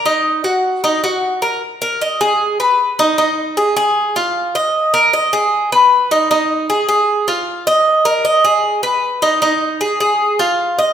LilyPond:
\new Staff \with { instrumentName = "Cuban tres" } { \time 4/4 \key ees \minor \tempo 4 = 154 ees'4 ges'4 ees'8 ges'4 bes'8 | \key aes \dorian r8 bes'8 ees''8 aes'4 ces''4 ees'8 | ees'4 aes'8 aes'4 f'4 ees''8~ | ees''8 bes'8 ees''8 aes'4 ces''4 ees'8 |
ees'4 aes'8 aes'4 f'4 ees''8~ | ees''8 bes'8 ees''8 aes'4 ces''4 ees'8 | ees'4 aes'8 aes'4 f'4 ees''8 | }